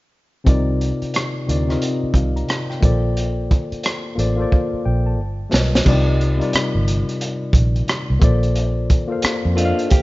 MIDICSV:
0, 0, Header, 1, 6, 480
1, 0, Start_track
1, 0, Tempo, 674157
1, 330, Time_signature, 4, 2, 24, 8
1, 7135, End_track
2, 0, Start_track
2, 0, Title_t, "Tine electric piano"
2, 0, Program_c, 0, 4
2, 314, Note_on_c, 0, 48, 83
2, 320, Note_on_c, 0, 60, 76
2, 329, Note_on_c, 0, 63, 70
2, 338, Note_on_c, 0, 65, 75
2, 345, Note_on_c, 0, 70, 72
2, 350, Note_on_c, 0, 74, 85
2, 452, Control_c, 0, 64, 127
2, 1009, Note_off_c, 0, 48, 0
2, 1011, Note_off_c, 0, 60, 0
2, 1016, Note_off_c, 0, 63, 0
2, 1020, Note_off_c, 0, 65, 0
2, 1024, Note_off_c, 0, 70, 0
2, 1026, Note_off_c, 0, 74, 0
2, 1040, Note_on_c, 0, 48, 63
2, 1045, Note_on_c, 0, 60, 53
2, 1054, Note_on_c, 0, 63, 52
2, 1061, Note_on_c, 0, 65, 57
2, 1067, Note_on_c, 0, 70, 57
2, 1074, Note_on_c, 0, 74, 72
2, 1186, Note_off_c, 0, 48, 0
2, 1189, Note_off_c, 0, 60, 0
2, 1193, Note_off_c, 0, 63, 0
2, 1193, Note_on_c, 0, 48, 68
2, 1196, Note_off_c, 0, 65, 0
2, 1200, Note_off_c, 0, 70, 0
2, 1201, Note_on_c, 0, 60, 66
2, 1203, Note_off_c, 0, 74, 0
2, 1205, Note_on_c, 0, 63, 61
2, 1215, Note_on_c, 0, 65, 67
2, 1221, Note_on_c, 0, 70, 60
2, 1225, Note_on_c, 0, 75, 71
2, 1510, Note_off_c, 0, 48, 0
2, 1513, Note_off_c, 0, 60, 0
2, 1516, Note_off_c, 0, 63, 0
2, 1520, Note_off_c, 0, 65, 0
2, 1523, Note_off_c, 0, 70, 0
2, 1525, Note_off_c, 0, 75, 0
2, 1539, Note_on_c, 0, 77, 49
2, 1678, Note_off_c, 0, 77, 0
2, 1682, Note_on_c, 0, 82, 56
2, 1910, Note_off_c, 0, 82, 0
2, 1921, Note_on_c, 0, 79, 51
2, 1995, Note_on_c, 0, 58, 72
2, 2007, Note_on_c, 0, 65, 66
2, 2015, Note_on_c, 0, 69, 66
2, 2020, Control_c, 0, 64, 0
2, 2024, Note_on_c, 0, 72, 62
2, 2029, Note_on_c, 0, 74, 83
2, 2149, Note_off_c, 0, 79, 0
2, 2156, Control_c, 0, 64, 127
2, 2918, Note_off_c, 0, 58, 0
2, 2924, Note_off_c, 0, 65, 0
2, 2928, Note_off_c, 0, 69, 0
2, 2932, Note_off_c, 0, 72, 0
2, 2935, Note_off_c, 0, 74, 0
2, 2958, Note_on_c, 0, 58, 65
2, 2966, Note_on_c, 0, 65, 60
2, 2974, Note_on_c, 0, 69, 57
2, 2985, Note_on_c, 0, 72, 66
2, 2991, Note_on_c, 0, 74, 74
2, 3099, Note_off_c, 0, 58, 0
2, 3107, Note_off_c, 0, 65, 0
2, 3107, Note_on_c, 0, 58, 70
2, 3113, Note_off_c, 0, 69, 0
2, 3116, Note_on_c, 0, 65, 67
2, 3118, Note_off_c, 0, 72, 0
2, 3122, Note_off_c, 0, 74, 0
2, 3127, Note_on_c, 0, 69, 62
2, 3134, Note_on_c, 0, 72, 62
2, 3145, Note_on_c, 0, 74, 80
2, 3214, Note_on_c, 0, 77, 51
2, 3440, Note_off_c, 0, 77, 0
2, 3456, Note_on_c, 0, 79, 62
2, 3596, Note_off_c, 0, 79, 0
2, 3605, Note_on_c, 0, 81, 59
2, 3683, Note_off_c, 0, 58, 0
2, 3688, Note_off_c, 0, 65, 0
2, 3693, Note_off_c, 0, 69, 0
2, 3697, Note_off_c, 0, 72, 0
2, 3699, Control_c, 0, 64, 0
2, 3702, Note_off_c, 0, 74, 0
2, 3813, Control_c, 0, 64, 127
2, 3831, Note_off_c, 0, 81, 0
2, 3913, Note_on_c, 0, 55, 69
2, 3921, Note_on_c, 0, 65, 58
2, 3931, Note_on_c, 0, 70, 65
2, 3939, Note_on_c, 0, 71, 67
2, 3949, Note_on_c, 0, 75, 75
2, 4150, Note_off_c, 0, 55, 0
2, 4155, Note_off_c, 0, 65, 0
2, 4156, Note_on_c, 0, 48, 94
2, 4159, Note_off_c, 0, 70, 0
2, 4164, Note_off_c, 0, 71, 0
2, 4165, Note_on_c, 0, 55, 82
2, 4168, Note_off_c, 0, 75, 0
2, 4168, Note_on_c, 0, 62, 62
2, 4175, Note_on_c, 0, 65, 77
2, 4180, Control_c, 0, 64, 0
2, 4184, Note_on_c, 0, 70, 79
2, 4190, Note_on_c, 0, 74, 97
2, 4218, Note_on_c, 0, 63, 80
2, 4227, Note_off_c, 0, 62, 0
2, 4288, Control_c, 0, 64, 127
2, 4525, Note_off_c, 0, 48, 0
2, 4530, Note_off_c, 0, 55, 0
2, 4535, Note_off_c, 0, 65, 0
2, 4538, Note_on_c, 0, 48, 70
2, 4539, Note_off_c, 0, 70, 0
2, 4542, Note_off_c, 0, 74, 0
2, 4546, Note_on_c, 0, 55, 63
2, 4547, Note_off_c, 0, 63, 0
2, 4556, Note_on_c, 0, 63, 59
2, 4561, Note_on_c, 0, 65, 61
2, 4567, Note_on_c, 0, 70, 61
2, 4574, Note_on_c, 0, 74, 79
2, 5434, Note_off_c, 0, 48, 0
2, 5438, Note_off_c, 0, 55, 0
2, 5443, Note_off_c, 0, 63, 0
2, 5446, Note_off_c, 0, 65, 0
2, 5449, Note_off_c, 0, 70, 0
2, 5452, Note_off_c, 0, 74, 0
2, 5833, Note_on_c, 0, 58, 72
2, 5842, Note_on_c, 0, 65, 66
2, 5850, Note_on_c, 0, 69, 70
2, 5859, Note_on_c, 0, 72, 74
2, 5860, Control_c, 0, 64, 0
2, 5867, Note_on_c, 0, 74, 89
2, 5998, Control_c, 0, 64, 127
2, 6425, Note_off_c, 0, 58, 0
2, 6430, Note_off_c, 0, 65, 0
2, 6434, Note_off_c, 0, 69, 0
2, 6438, Note_off_c, 0, 72, 0
2, 6442, Note_off_c, 0, 74, 0
2, 6461, Note_on_c, 0, 58, 68
2, 6469, Note_on_c, 0, 65, 63
2, 6477, Note_on_c, 0, 69, 65
2, 6486, Note_on_c, 0, 72, 64
2, 6495, Note_on_c, 0, 77, 78
2, 6782, Note_off_c, 0, 58, 0
2, 6787, Note_off_c, 0, 65, 0
2, 6791, Note_off_c, 0, 69, 0
2, 6791, Note_on_c, 0, 58, 65
2, 6796, Note_off_c, 0, 72, 0
2, 6800, Note_off_c, 0, 77, 0
2, 6800, Note_on_c, 0, 65, 63
2, 6808, Note_on_c, 0, 69, 64
2, 6817, Note_on_c, 0, 72, 62
2, 6826, Note_on_c, 0, 75, 61
2, 6871, Note_on_c, 0, 77, 83
2, 6876, Note_off_c, 0, 75, 0
2, 7135, Note_off_c, 0, 58, 0
2, 7135, Note_off_c, 0, 65, 0
2, 7135, Note_off_c, 0, 69, 0
2, 7135, Note_off_c, 0, 72, 0
2, 7135, Note_off_c, 0, 77, 0
2, 7135, End_track
3, 0, Start_track
3, 0, Title_t, "Clean electric guitar"
3, 0, Program_c, 1, 27
3, 6813, Note_on_c, 1, 65, 76
3, 6816, Note_on_c, 1, 62, 56
3, 7039, Note_off_c, 1, 65, 0
3, 7041, Note_off_c, 1, 62, 0
3, 7051, Note_on_c, 1, 67, 82
3, 7135, Note_off_c, 1, 67, 0
3, 7135, End_track
4, 0, Start_track
4, 0, Title_t, "Fingered electric bass"
4, 0, Program_c, 2, 33
4, 333, Note_on_c, 2, 36, 76
4, 644, Note_off_c, 2, 36, 0
4, 1058, Note_on_c, 2, 38, 67
4, 1246, Note_off_c, 2, 38, 0
4, 1526, Note_on_c, 2, 36, 73
4, 1719, Note_off_c, 2, 36, 0
4, 2015, Note_on_c, 2, 34, 75
4, 2516, Note_off_c, 2, 34, 0
4, 2974, Note_on_c, 2, 33, 70
4, 3164, Note_off_c, 2, 33, 0
4, 3459, Note_on_c, 2, 34, 72
4, 3694, Note_off_c, 2, 34, 0
4, 3694, Note_on_c, 2, 31, 88
4, 3884, Note_off_c, 2, 31, 0
4, 3937, Note_on_c, 2, 35, 74
4, 4126, Note_off_c, 2, 35, 0
4, 4177, Note_on_c, 2, 36, 97
4, 4557, Note_off_c, 2, 36, 0
4, 4805, Note_on_c, 2, 31, 76
4, 4995, Note_off_c, 2, 31, 0
4, 5365, Note_on_c, 2, 34, 79
4, 5559, Note_off_c, 2, 34, 0
4, 5767, Note_on_c, 2, 36, 78
4, 5836, Note_off_c, 2, 36, 0
4, 5853, Note_on_c, 2, 34, 79
4, 6427, Note_off_c, 2, 34, 0
4, 6730, Note_on_c, 2, 41, 80
4, 6918, Note_off_c, 2, 41, 0
4, 7135, End_track
5, 0, Start_track
5, 0, Title_t, "Muted fingered electric bass strokes"
5, 728, Note_on_c, 9, 29, 36
5, 800, Note_off_c, 9, 29, 0
5, 1449, Note_on_c, 9, 29, 35
5, 1520, Note_off_c, 9, 29, 0
5, 2650, Note_on_c, 9, 29, 42
5, 2721, Note_off_c, 9, 29, 0
5, 3370, Note_on_c, 9, 29, 38
5, 3441, Note_off_c, 9, 29, 0
5, 4658, Note_on_c, 9, 29, 40
5, 4729, Note_off_c, 9, 29, 0
5, 6578, Note_on_c, 9, 29, 44
5, 6649, Note_off_c, 9, 29, 0
5, 7135, End_track
6, 0, Start_track
6, 0, Title_t, "Drums"
6, 331, Note_on_c, 9, 36, 85
6, 333, Note_on_c, 9, 42, 57
6, 402, Note_off_c, 9, 36, 0
6, 404, Note_off_c, 9, 42, 0
6, 578, Note_on_c, 9, 42, 44
6, 649, Note_off_c, 9, 42, 0
6, 725, Note_on_c, 9, 42, 29
6, 796, Note_off_c, 9, 42, 0
6, 810, Note_on_c, 9, 42, 74
6, 828, Note_on_c, 9, 37, 94
6, 882, Note_off_c, 9, 42, 0
6, 899, Note_off_c, 9, 37, 0
6, 1062, Note_on_c, 9, 42, 57
6, 1133, Note_off_c, 9, 42, 0
6, 1210, Note_on_c, 9, 42, 31
6, 1213, Note_on_c, 9, 37, 30
6, 1281, Note_off_c, 9, 42, 0
6, 1284, Note_off_c, 9, 37, 0
6, 1293, Note_on_c, 9, 42, 66
6, 1364, Note_off_c, 9, 42, 0
6, 1522, Note_on_c, 9, 36, 77
6, 1530, Note_on_c, 9, 42, 55
6, 1593, Note_off_c, 9, 36, 0
6, 1601, Note_off_c, 9, 42, 0
6, 1686, Note_on_c, 9, 42, 27
6, 1757, Note_off_c, 9, 42, 0
6, 1769, Note_on_c, 9, 42, 55
6, 1780, Note_on_c, 9, 37, 86
6, 1841, Note_off_c, 9, 42, 0
6, 1851, Note_off_c, 9, 37, 0
6, 1928, Note_on_c, 9, 37, 30
6, 2000, Note_off_c, 9, 37, 0
6, 2012, Note_on_c, 9, 36, 88
6, 2016, Note_on_c, 9, 42, 52
6, 2083, Note_off_c, 9, 36, 0
6, 2087, Note_off_c, 9, 42, 0
6, 2256, Note_on_c, 9, 42, 57
6, 2327, Note_off_c, 9, 42, 0
6, 2499, Note_on_c, 9, 36, 73
6, 2500, Note_on_c, 9, 42, 50
6, 2570, Note_off_c, 9, 36, 0
6, 2571, Note_off_c, 9, 42, 0
6, 2649, Note_on_c, 9, 42, 28
6, 2720, Note_off_c, 9, 42, 0
6, 2730, Note_on_c, 9, 42, 77
6, 2747, Note_on_c, 9, 37, 93
6, 2801, Note_off_c, 9, 42, 0
6, 2819, Note_off_c, 9, 37, 0
6, 2982, Note_on_c, 9, 42, 57
6, 3053, Note_off_c, 9, 42, 0
6, 3220, Note_on_c, 9, 36, 67
6, 3291, Note_off_c, 9, 36, 0
6, 3944, Note_on_c, 9, 38, 83
6, 4016, Note_off_c, 9, 38, 0
6, 4096, Note_on_c, 9, 38, 76
6, 4167, Note_off_c, 9, 38, 0
6, 4172, Note_on_c, 9, 36, 100
6, 4172, Note_on_c, 9, 49, 81
6, 4243, Note_off_c, 9, 49, 0
6, 4244, Note_off_c, 9, 36, 0
6, 4421, Note_on_c, 9, 42, 48
6, 4492, Note_off_c, 9, 42, 0
6, 4566, Note_on_c, 9, 42, 30
6, 4637, Note_off_c, 9, 42, 0
6, 4651, Note_on_c, 9, 42, 85
6, 4668, Note_on_c, 9, 37, 108
6, 4722, Note_off_c, 9, 42, 0
6, 4739, Note_off_c, 9, 37, 0
6, 4897, Note_on_c, 9, 42, 64
6, 4968, Note_off_c, 9, 42, 0
6, 5047, Note_on_c, 9, 42, 34
6, 5118, Note_off_c, 9, 42, 0
6, 5133, Note_on_c, 9, 42, 79
6, 5204, Note_off_c, 9, 42, 0
6, 5362, Note_on_c, 9, 36, 87
6, 5372, Note_on_c, 9, 42, 65
6, 5433, Note_off_c, 9, 36, 0
6, 5443, Note_off_c, 9, 42, 0
6, 5523, Note_on_c, 9, 42, 32
6, 5595, Note_off_c, 9, 42, 0
6, 5610, Note_on_c, 9, 42, 55
6, 5621, Note_on_c, 9, 37, 90
6, 5681, Note_off_c, 9, 42, 0
6, 5692, Note_off_c, 9, 37, 0
6, 5850, Note_on_c, 9, 36, 93
6, 5850, Note_on_c, 9, 42, 55
6, 5921, Note_off_c, 9, 36, 0
6, 5921, Note_off_c, 9, 42, 0
6, 6002, Note_on_c, 9, 42, 32
6, 6073, Note_off_c, 9, 42, 0
6, 6091, Note_on_c, 9, 42, 61
6, 6162, Note_off_c, 9, 42, 0
6, 6335, Note_on_c, 9, 42, 51
6, 6337, Note_on_c, 9, 36, 74
6, 6407, Note_off_c, 9, 42, 0
6, 6408, Note_off_c, 9, 36, 0
6, 6567, Note_on_c, 9, 42, 88
6, 6584, Note_on_c, 9, 37, 105
6, 6638, Note_off_c, 9, 42, 0
6, 6655, Note_off_c, 9, 37, 0
6, 6819, Note_on_c, 9, 42, 67
6, 6890, Note_off_c, 9, 42, 0
6, 6968, Note_on_c, 9, 42, 35
6, 7040, Note_off_c, 9, 42, 0
6, 7052, Note_on_c, 9, 42, 82
6, 7059, Note_on_c, 9, 36, 80
6, 7123, Note_off_c, 9, 42, 0
6, 7130, Note_off_c, 9, 36, 0
6, 7135, End_track
0, 0, End_of_file